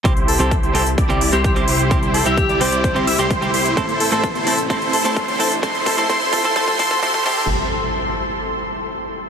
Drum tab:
CC |----------------|----------------|----------------|--------------x-|
HH |xxoxxxoxxxoxxxox|xxoxxxoxxxoxxxox|xxoxxxoxxxoxxxox|xxoxxxoxxxoxxx--|
BD |o---o---o---o---|o---o---o---o---|o---o---o---o---|o-o-o-o-ooooooo-|

CC |----------------|
HH |----------------|
BD |----------------|